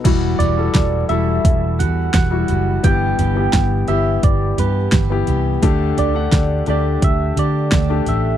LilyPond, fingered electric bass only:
\new Staff \with { instrumentName = "Fingered electric bass" } { \clef bass \time 4/4 \key e \minor \tempo 4 = 86 e,,8 e,,8 e,,8 e,,8 e,,8 e,8 e,,8 fis,,8 | g,,8 g,,8 g,,8 g,,8 g,,8 g,8 g,,8 c,8 | d,8 d,8 d,8 d,8 d,8 d8 d,8 a,,8 | }